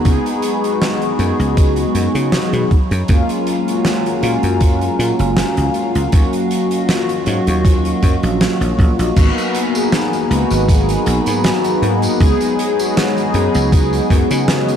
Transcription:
Already playing: ambient pad B5
0.04 slap bass C#2, ambient pad F#3 D#5 C#6, analog polysynth G#3 B3 D#4 G#4, kick, closed hi-hat
0.26 closed hi-hat
0.42 closed hi-hat
0.63 analog polysynth G#3 B3 D#4 F#4, closed hi-hat
0.82 snare, closed hi-hat
1.02 closed hi-hat
1.18 slap bass F#2, analog polysynth G#3 B3 D#4 G#4, closed hi-hat
1.39 slap bass C#2, closed hi-hat
1.57 kick, closed hi-hat
1.76 closed hi-hat
1.95 slap bass F#2, closed hi-hat
2.15 slap bass C#3, closed hi-hat
2.32 snare, closed hi-hat
2.53 slap bass B2, closed hi-hat
2.71 ambient pad F5 G#5 A#5, kick, closed hi-hat
2.91 slap bass F#2, closed hi-hat
3.08 slap bass F#2, analog polysynth G#3 A#3 C#4 F4, kick, closed hi-hat
3.29 closed hi-hat
3.47 closed hi-hat
3.66 analog polysynth G#3 A#3 C#4 F#4, closed hi-hat
3.85 snare, closed hi-hat
4.06 closed hi-hat
4.21 slap bass A#2, analog polysynth G#3 A#3 C#4 F4, closed hi-hat
4.43 slap bass F#2, closed hi-hat
4.61 kick, closed hi-hat
4.81 closed hi-hat
4.99 slap bass A#2, closed hi-hat
5.19 slap bass F#1, closed hi-hat
5.37 snare, closed hi-hat
5.57 slap bass C#2, closed hi-hat
5.74 closed hi-hat
5.95 slap bass C#2, closed hi-hat
6.12 slap bass D#2, analog polysynth F#3 A#3 C#4 F#4, ambient pad F#3 D#5 C#6, kick, closed hi-hat
6.33 closed hi-hat
6.51 closed hi-hat
6.70 analog polysynth F#3 A#3 C#4 F4, closed hi-hat
6.89 snare, closed hi-hat
7.09 closed hi-hat
7.25 slap bass G#2, analog polysynth F#3 A#3 C#4 F#4, closed hi-hat
7.47 slap bass D#2, closed hi-hat
7.65 kick, closed hi-hat
7.85 closed hi-hat
8.03 slap bass F#2, kick, closed hi-hat
8.23 slap bass A#1, closed hi-hat
8.41 snare, closed hi-hat
8.61 slap bass A#1, closed hi-hat
8.79 slap bass A#1, kick, closed hi-hat
8.99 slap bass A#1, closed hi-hat
9.16 slap bass G#1, ambient pad F#3 G#5 A#5 B5, analog polysynth A#3 B3 D#4 F#4, kick, closed hi-hat, tambourine, crash
9.38 closed hi-hat, tambourine
9.55 closed hi-hat
9.74 analog polysynth A#3 B3 D#4 G#4, closed hi-hat, tambourine
9.92 snare, closed hi-hat, tambourine
10.13 closed hi-hat, tambourine
10.29 slap bass C#2, analog polysynth A#3 B3 D#4 F#4, closed hi-hat
10.50 slap bass G#1, closed hi-hat, tambourine
10.69 kick, closed hi-hat, tambourine
10.89 closed hi-hat, tambourine
11.06 slap bass B1, closed hi-hat
11.26 slap bass G#2, closed hi-hat, tambourine
11.44 snare, closed hi-hat, tambourine
11.64 closed hi-hat, tambourine
11.82 slap bass G#2, closed hi-hat
12.02 closed hi-hat, tambourine
12.19 slap bass C#2, analog polysynth G#3 B3 D#4 G#4, ambient pad C#5 D#5, kick, closed hi-hat, tambourine
12.41 closed hi-hat, tambourine
12.59 closed hi-hat
12.78 analog polysynth G#3 B3 D#4 F#4, closed hi-hat, tambourine
12.97 snare, closed hi-hat, tambourine
13.17 closed hi-hat, tambourine
13.32 slap bass F#2, analog polysynth G#3 B3 D#4 G#4, closed hi-hat
13.54 slap bass C#2, closed hi-hat, tambourine
13.72 kick, closed hi-hat, tambourine
13.93 closed hi-hat, tambourine
14.10 slap bass F#2, kick, closed hi-hat
14.31 slap bass C#3, closed hi-hat, tambourine
14.48 snare, closed hi-hat, tambourine
14.69 closed hi-hat, tambourine

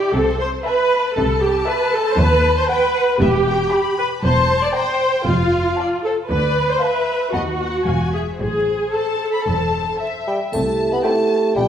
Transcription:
Already playing: viola section G4, violin section D5
0.15 double bass section C2, cello section C3, viola section A4, violin section C5
0.40 viola section C5
0.65 viola section B4, violin section E5 A5
0.92 violin section A5
1.16 double bass section C2, cello section C3, viola section A4
1.42 viola section G4
1.68 viola section B4, violin section E5 A5
1.93 viola section A4
2.12 viola section C5
2.18 cello section D#2, double bass section D#2, viola section B4
2.57 viola section C5
2.69 viola section B4, violin section F#5 G5 A5
2.95 violin section F#5
3.20 double bass section E1, cello section E2, viola section G4, violin section E5
3.47 violin section G5
3.71 violin section G5 B5
3.98 viola section B4
4.23 double bass section E1, cello section E2, viola section C5, violin section A5
4.63 viola section D5
4.75 viola section C5, violin section G5 A#5
5.27 double bass section F1, cello section F2, viola section F4, violin section F5
5.77 violin section D5 F5 A5
6.04 viola section A4, violin section C5
6.30 cello section D2, double bass section D2, viola section B4, violin section D5
6.70 viola section C5
6.81 viola section B4, violin section E5 F5 A5
7.33 cello section D#2, double bass section D#2, viola section F#4, violin section D#5 F#5 A5
7.59 violin section F#5
7.85 double bass section E1, cello section E2, violin section F5 G#5
8.13 viola section G#4, violin section E5
8.39 double bass section A1, cello section A2, viola section G#4, violin section C5
8.94 viola section A4, violin section A5
9.34 violin section B5
9.46 double bass section E1, cello section E2, violin section A5
10.00 violin section E5
10.27 bassoon G3, violin section G5
10.53 double bass section C2, cello section C3, bassoon A3, french horn section E4 G4, violin section A5, triangle
10.92 bassoon B3, violin section B5
11.04 bassoon A3, viola section C4 E4, violin section G4 G5 A5
11.56 double bass section B1, cello section B2, bassoon G3, french horn section F4, violin section G5

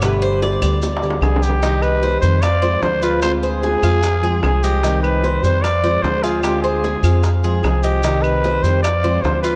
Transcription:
Already playing: upright bass G1
0.02 steel-string acoustic guitar B2 D3 G3 B3 G4, cuban tres B4, high bongo, claves, maracas
0.22 cuban tres C5, maracas
0.42 cuban tres D5, high bongo, maracas
0.62 upright bass D2, steel-string acoustic guitar D3 G3 B3 G4, cuban tres D5, high bongo, claves, maracas
0.82 muted steel-string acoustic guitar stroke, high bongo, maracas
0.96 high bongo
1.02 steel-string acoustic guitar D3 G3 B3 G4, maracas
1.10 high bongo
1.21 upright bass C2, steel-string acoustic guitar D3 G3 B3 G4, trumpet G#4, low bongo, claves, maracas
1.36 low bongo
1.43 trumpet G4, maracas
1.50 low bongo
1.62 steel-string acoustic guitar C3 D#3 G3 C4 G4, cuban tres D#4, high bongo, maracas
1.82 trumpet B4, claves, maracas
2.02 cuban tres C5, high bongo, maracas
2.21 upright bass F2, steel-string acoustic guitar D#3 G3 C4 G4, trumpet C5, maracas
2.42 trumpet D5, cuban tres F5, muted steel-string acoustic guitar stroke, high bongo, claves, maracas
2.62 steel-string acoustic guitar F3 G#3 C4 F4, cuban tres C5, maracas
2.82 upright bass D2, steel-string acoustic guitar F3 G#3 C4 F4, trumpet C5, high bongo, low bongo, maracas
3.02 cuban tres F4, trumpet B4, maracas
3.22 steel-string acoustic guitar D3 G#3 C4 F4, trumpet C5, high bongo, claves, maracas
3.43 trumpet G#4, cuban tres C5, maracas
3.63 cuban tres G#4, high bongo, maracas
3.83 upright bass F2, steel-string acoustic guitar G#3 C4 F4, cuban tres F5, high bongo, claves, maracas
4.03 muted steel-string acoustic guitar stroke, high bongo, maracas
4.22 steel-string acoustic guitar F3 G#3 C4 F4, cuban tres G#4, high bongo, maracas
4.43 upright bass C2, steel-string acoustic guitar F3 G#3 C4 F4, trumpet G#4, high bongo, low bongo, claves, maracas
4.63 trumpet G4, cuban tres D#5, high bongo, maracas
4.83 steel-string acoustic guitar C3 D#3 G3 C4 G4, cuban tres D#4, high bongo, maracas
5.02 trumpet B4, claves, maracas
5.23 cuban tres C5, high bongo, maracas
5.43 upright bass F2, steel-string acoustic guitar D#3 G3 C4 G4, trumpet C5, maracas
5.62 trumpet D5, cuban tres F5, muted steel-string acoustic guitar stroke, high bongo, claves, maracas
5.83 steel-string acoustic guitar F3 G#3 C4 F4, cuban tres C5, maracas
6.02 upright bass D2, steel-string acoustic guitar F3 G#3 C4 F4, trumpet C5, high bongo, low bongo, maracas
6.23 cuban tres F4, trumpet G#4, maracas
6.42 steel-string acoustic guitar D3 G#3 C4 F4, trumpet G4, high bongo, claves, maracas
6.62 trumpet G#4, cuban tres C5, maracas
6.84 cuban tres G#4, high bongo, maracas
7.03 upright bass F2, steel-string acoustic guitar G#3 C4 F4, cuban tres F5, high bongo, claves, maracas
7.23 muted steel-string acoustic guitar stroke, high bongo, maracas
7.44 steel-string acoustic guitar F3 G#3 C4 F4, cuban tres G#4, high bongo, maracas
7.62 upright bass C2, steel-string acoustic guitar F3 G#3 C4 F4, trumpet G#4, high bongo, low bongo, claves, maracas
7.83 trumpet G4, cuban tres D#5, high bongo, maracas
8.03 steel-string acoustic guitar C3 D#3 G3 C4 G4, cuban tres D#4, high bongo, maracas
8.23 trumpet B4, claves, maracas
8.44 cuban tres C5, high bongo, maracas
8.63 upright bass F2, steel-string acoustic guitar D#3 G3 C4 G4, trumpet C5, maracas
8.83 trumpet D5, cuban tres F5, muted steel-string acoustic guitar stroke, high bongo, claves, maracas
9.04 steel-string acoustic guitar F3 G#3 C4 F4, cuban tres C5, maracas
9.22 upright bass D2, steel-string acoustic guitar F3 G#3 C4 F4, trumpet C5, high bongo, low bongo, maracas
9.42 cuban tres F4, trumpet B4, maracas

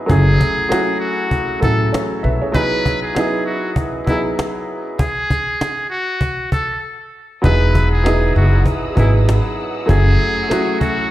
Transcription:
Already playing: upright piano F#3 B3 D#4 E4 G#4
0.06 upright bass F#1, upright piano F#3 A3 C#4 E4, muted trumpet G#4, cajon bass
0.10 upright piano G#4
0.41 cajon bass
0.69 upright piano F#3 A3 C#4 E4, cajon slap
0.73 upright piano F#4
1.00 muted trumpet F#4
1.31 cajon bass
1.60 upright bass A1, upright piano F#3 A3 C#4 E4, muted trumpet A4, cajon bass
1.64 upright piano A4
1.92 upright piano G#4 C#5, cajon slap
2.23 upright bass B1, upright piano B4 E5
2.41 upright piano G#4 C#5
2.52 upright piano F#3 B3 D#4 E4, muted trumpet B4, cajon bass
2.57 upright piano G#4
2.86 cajon bass
3.02 muted trumpet G#4
3.14 upright piano F#3 B3 D#4 E4, cajon slap
3.19 upright piano G#4
3.46 muted trumpet F#4
3.76 cajon bass
4.06 upright piano F#3 B3 D#4 E4, muted trumpet E4, cajon bass
4.11 upright piano G#4
4.39 cajon slap
4.99 muted trumpet G#4, cajon bass
5.30 cajon bass, cajon slap
5.61 cajon slap
5.90 muted trumpet F#4
6.21 cajon bass
6.52 muted trumpet A4, cajon bass
7.42 upright bass E1, upright piano F#3 B3 D#4 E4, string section G#4 F#5 D#6 E6, muted trumpet B4, cajon bass
7.46 upright piano G#4
7.75 cajon bass
7.92 muted trumpet G#4
8.04 upright piano F#3 B3 D#4 E4, cajon slap
8.08 upright piano G#4
8.36 upright bass F#1, muted trumpet F#4, cajon slap
8.66 cajon bass
8.95 upright bass G#1, upright piano F#3 B3 D#4 E4, muted trumpet E4, cajon bass
9.00 upright piano G#4
9.29 cajon slap
9.59 cajon slap
9.86 upright bass F#1, upright piano F#3 A3 C#4 E4, string section A3 C#6, muted trumpet G#4, cajon bass
9.90 upright piano G#4
10.21 cajon slap
10.49 upright piano F#3 A3 C#4 E4, cajon slap
10.53 upright piano F#4
10.81 muted trumpet F#4, cajon bass

